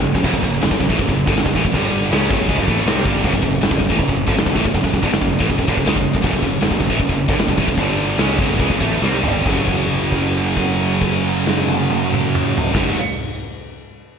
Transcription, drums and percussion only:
0.15 kick
0.24 kick, china, crash
0.34 kick
0.43 kick
0.62 snare, china
0.71 kick
0.80 kick
0.90 kick
0.99 kick, china
1.09 kick
1.27 kick
1.36 snare, china
1.46 kick
1.55 kick
1.65 kick
1.74 kick, china
2.12 snare, china
2.30 kick
2.49 kick, china
2.58 kick
2.68 kick
2.87 snare, china
3.05 kick
3.24 kick, crash, china
3.34 kick
3.43 kick
3.62 snare, china
3.71 kick
3.81 kick
3.90 kick
3.99 kick, china
4.09 kick
4.28 kick
4.37 snare, china
4.46 kick
4.56 kick
4.65 kick
4.75 kick, china
4.84 kick
4.94 kick
5.03 kick
5.12 snare, china
5.22 kick
5.40 kick
5.50 kick, china
5.59 kick
5.68 kick
5.78 kick
5.86 snare, china
5.96 kick
6.15 kick
6.23 kick, crash, china
6.33 kick
6.43 kick
6.62 snare, china
6.71 kick
6.80 kick
6.90 kick
7.00 kick, china
7.09 kick
7.29 kick
7.39 snare, china
7.48 kick
7.58 kick
7.68 kick
7.77 kick, china
8.18 snare, china
8.39 kick
8.60 kick, china
8.70 kick
8.81 kick
9.04 snare
9.24 floor tom
9.46 kick, crash
9.68 kick, crash
9.91 crash
10.12 kick, crash
10.34 crash
10.57 kick, crash
10.79 crash
11.01 kick, crash
11.24 crash
11.47 snare
11.68 high tom
11.90 high tom
12.13 mid tom
12.35 mid tom
12.57 floor tom
12.75 kick, snare, crash

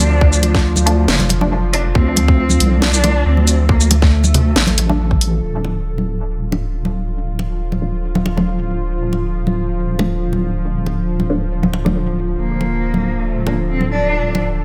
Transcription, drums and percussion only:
0.21 kick
0.33 shaker
0.43 closed hi-hat, muted conga
0.55 kick, snare
0.76 high conga, shaker
0.87 closed hi-hat
1.08 snare
1.19 closed hi-hat, high conga
1.29 closed hi-hat, muted conga
1.41 high conga
1.73 open hi-hat
1.95 kick
2.16 closed hi-hat, muted conga
2.28 kick
2.49 high conga, shaker
2.60 closed hi-hat
2.82 snare
2.94 shaker
3.04 closed hi-hat, muted conga
3.37 high conga
3.47 open hi-hat, shaker
3.69 kick
3.81 shaker
3.91 closed hi-hat, muted conga
4.02 kick, snare
4.24 high conga, shaker
4.34 closed hi-hat, low conga
4.56 snare
4.67 closed hi-hat, high conga
4.78 closed hi-hat, muted conga
4.89 high conga
5.11 kick
5.21 open hi-hat
5.64 muted conga
5.98 high conga
6.52 muted conga
6.85 high conga
7.39 muted conga
7.72 high conga
8.15 high conga
8.26 muted conga
8.38 high conga
9.13 muted conga
9.47 high conga
9.99 muted conga
10.33 high conga
10.86 muted conga
11.20 high conga
11.63 high conga
11.73 muted conga
11.86 high conga
12.61 muted conga
12.94 high conga
13.47 muted conga
13.81 high conga
14.35 muted conga

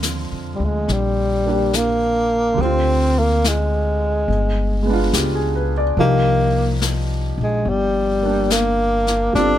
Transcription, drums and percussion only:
0.03 snare, hi-hat pedal
0.89 brush sweep, snare
1.73 snare, hi-hat pedal
2.59 brush sweep
3.44 snare, hi-hat pedal
4.30 brush sweep
5.13 snare, hi-hat pedal
5.98 brush sweep
6.82 snare, hi-hat pedal
7.66 brush sweep
8.50 snare, hi-hat pedal
9.07 snare
9.35 brush sweep, snare

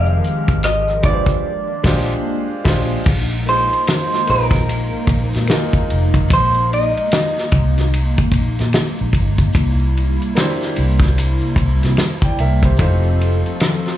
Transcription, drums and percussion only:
0.06 maracas
0.24 closed hi-hat
0.48 kick, maracas
0.63 finger snap, cross-stick, closed hi-hat, maracas
0.88 cross-stick, maracas
1.02 kick, closed hi-hat, maracas
1.26 kick, cross-stick, closed hi-hat, maracas
1.84 kick, snare, crash
2.65 kick, snare, crash
3.04 kick, crash, maracas
3.30 maracas
3.48 ride
3.73 ride, maracas
3.87 finger snap, snare, ride, maracas
4.12 snare, maracas
4.27 open hi-hat, ride, maracas
4.51 kick, snare, ride, maracas
4.69 hi-hat pedal, ride, maracas
4.92 maracas
5.07 kick, ride, maracas
5.33 snare, ride, maracas
5.48 finger snap, snare, ride, maracas
5.73 kick, maracas
5.90 ride
6.14 kick, ride, maracas
6.28 kick, ride, maracas
6.54 maracas
6.73 ride
6.97 ride, maracas
7.12 finger snap, snare, ride, maracas
7.37 snare, maracas
7.51 kick, ride, maracas
7.78 snare, ride, maracas
7.94 ride, maracas
8.17 kick, maracas
8.32 kick, ride, maracas
8.58 snare, ride, maracas
8.73 finger snap, snare, ride, maracas
8.99 maracas
9.13 kick, ride
9.38 kick, ride, maracas
9.53 kick, ride, maracas
9.79 maracas
9.97 ride
10.22 ride, maracas
10.36 finger snap, snare, ride, maracas
10.61 snare, maracas
10.76 open hi-hat, ride, maracas
11.00 kick, snare, ride, maracas
11.18 hi-hat pedal, ride, maracas
11.41 maracas
11.56 kick, ride, maracas
11.83 snare, ride, maracas
11.97 finger snap, snare, ride, maracas
12.22 kick, maracas
12.38 ride
12.63 kick, ride, maracas
12.77 kick, ride, maracas
13.03 maracas
13.21 ride
13.46 ride, maracas
13.60 finger snap, snare, ride, maracas
13.85 snare, maracas

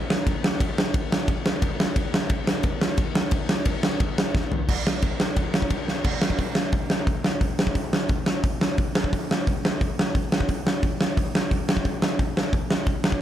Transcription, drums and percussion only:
0.10 snare
0.27 kick, ride
0.44 snare
0.60 kick, ride
0.78 snare
0.94 kick, ride
1.12 snare
1.28 kick, ride
1.46 snare
1.62 kick, ride
1.80 snare
1.96 kick, ride
2.14 snare
2.30 kick, ride
2.47 snare
2.63 kick, ride
2.81 snare
2.97 kick, ride
3.15 snare
3.31 kick, ride
3.49 snare
3.65 kick, ride
3.83 snare
4.00 kick, ride
4.18 snare
4.35 kick, snare
4.52 floor tom
4.69 kick, crash
4.87 snare
5.02 kick, ride
5.20 snare
5.36 kick, ride
5.54 snare
5.62 kick
5.70 kick, ride
5.88 snare
6.04 kick, crash
6.22 snare
6.30 kick
6.38 kick, open hi-hat
6.55 snare
6.72 kick, open hi-hat
6.90 snare
7.07 kick, open hi-hat
7.24 snare
7.41 kick, open hi-hat
7.59 snare
7.67 kick
7.75 kick, open hi-hat
7.93 snare
8.09 kick, open hi-hat
8.26 snare
8.43 kick, open hi-hat
8.61 snare
8.78 kick, open hi-hat
8.95 snare
9.04 kick
9.13 kick, open hi-hat
9.31 snare
9.47 kick, open hi-hat
9.65 snare
9.81 kick, open hi-hat
9.99 snare
10.15 kick, open hi-hat
10.32 snare
10.41 kick
10.49 kick, open hi-hat
10.67 snare
10.83 kick, open hi-hat
11.01 snare
11.17 kick, open hi-hat
11.35 snare
11.51 kick, open hi-hat
11.69 snare
11.77 kick
11.85 kick, open hi-hat
12.02 snare
12.19 kick, open hi-hat
12.37 snare
12.53 kick, open hi-hat
12.70 snare
12.86 kick, open hi-hat
13.04 snare
13.12 kick

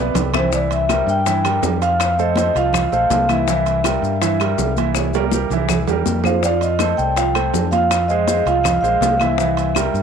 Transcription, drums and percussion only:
0.15 low bongo, low conga, high timbale, low timbale, maracas
0.34 low bongo, low conga, high timbale, claves, maracas
0.52 high bongo, high conga, maracas
0.71 high bongo, high conga, high timbale, maracas
0.89 high bongo, high conga, high timbale, low timbale, claves, maracas
1.07 high conga, maracas
1.26 high bongo, high conga, high timbale, maracas
1.44 high bongo, high conga, high timbale, claves, maracas
1.63 high bongo, low bongo, high conga, low timbale, maracas
1.82 high bongo, high timbale, maracas
2.00 high bongo, high conga, high timbale, claves, maracas
2.18 high bongo, high conga, maracas
2.36 high bongo, high conga, high timbale, low timbale, maracas
2.55 high conga, high timbale, maracas
2.73 high bongo, high conga, low conga, high timbale, claves, maracas
2.93 high bongo, maracas
3.10 high bongo, low bongo, high conga, high timbale, low timbale, maracas
3.29 high bongo, high conga, high timbale, claves, maracas
3.48 high bongo, maracas
3.66 high bongo, high conga, high timbale, maracas
3.84 high bongo, high conga, high timbale, low timbale, claves, maracas
4.04 high conga, maracas
4.22 high bongo, high conga, high timbale, maracas
4.40 high bongo, high conga, high timbale, claves, maracas
4.58 high bongo, low bongo, high conga, low timbale, maracas
4.77 high bongo, high conga, high timbale, maracas
4.95 high bongo, high conga, high timbale, claves, maracas
5.13 high bongo, high conga, high timbale, maracas
5.31 high bongo, high conga, maracas
5.51 high conga, low timbale, maracas
5.69 high bongo, high conga, low conga, low timbale, claves, maracas
5.87 high bongo, high conga, low timbale, maracas
6.06 high bongo, low bongo, high conga, maracas
6.24 high bongo, high conga, low timbale, claves, maracas
6.43 high bongo, maracas
6.61 high bongo, high conga, high timbale, maracas
6.79 high bongo, high conga, high timbale, low timbale, claves, maracas
6.97 high conga, maracas
7.16 high bongo, high conga, high timbale, maracas
7.35 high bongo, high conga, high timbale, claves, maracas
7.53 high bongo, low bongo, high conga, low timbale, maracas
7.72 high bongo, high conga, high timbale, maracas
7.90 high bongo, high conga, high timbale, claves, maracas
8.09 high bongo, high conga, maracas
8.27 high bongo, high conga, high timbale, low timbale, maracas
8.47 high conga, high timbale, maracas
8.64 high bongo, high conga, low conga, high timbale, claves, maracas
8.84 high bongo, high conga, maracas
9.02 high bongo, low bongo, high conga, high timbale, low timbale, maracas
9.20 high bongo, high conga, high timbale, claves, maracas
9.38 high bongo, maracas
9.57 high bongo, high conga, high timbale, maracas
9.75 high bongo, high conga, high timbale, low timbale, claves, maracas
9.94 high conga, maracas

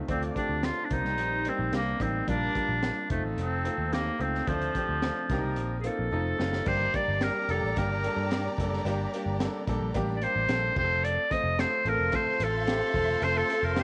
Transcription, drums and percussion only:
0.09 kick, closed hi-hat
0.22 closed hi-hat
0.36 kick, closed hi-hat
0.63 snare, closed hi-hat
0.90 kick, closed hi-hat
1.05 snare
1.18 closed hi-hat
1.45 closed hi-hat
1.73 snare, closed hi-hat
2.00 kick, closed hi-hat
2.28 kick, closed hi-hat
2.55 kick, closed hi-hat
2.83 snare, closed hi-hat
3.10 kick, closed hi-hat
3.38 closed hi-hat
3.65 closed hi-hat
3.93 snare, closed hi-hat
4.21 closed hi-hat
4.35 snare
4.47 kick, closed hi-hat
4.62 closed hi-hat
4.75 kick, closed hi-hat
5.02 snare, closed hi-hat
5.30 kick, snare, closed hi-hat
5.56 closed hi-hat
5.84 closed hi-hat
6.40 snare
6.53 snare
6.66 kick, crash
6.94 kick, closed hi-hat
7.21 snare, closed hi-hat
7.49 closed hi-hat
7.76 kick, closed hi-hat
8.04 closed hi-hat
8.31 snare, closed hi-hat
8.58 kick, closed hi-hat
8.74 snare
8.86 closed hi-hat
9.14 closed hi-hat
9.40 snare, closed hi-hat
9.68 kick, closed hi-hat
9.94 kick, closed hi-hat
10.22 closed hi-hat
10.49 snare, closed hi-hat
10.76 kick, crash
11.04 closed hi-hat
11.31 kick, closed hi-hat
11.59 snare, closed hi-hat
11.86 closed hi-hat
12.12 kick, closed hi-hat
12.40 closed hi-hat
12.67 snare, closed hi-hat
12.94 kick, open hi-hat
13.22 closed hi-hat
13.50 closed hi-hat
13.76 snare, closed hi-hat

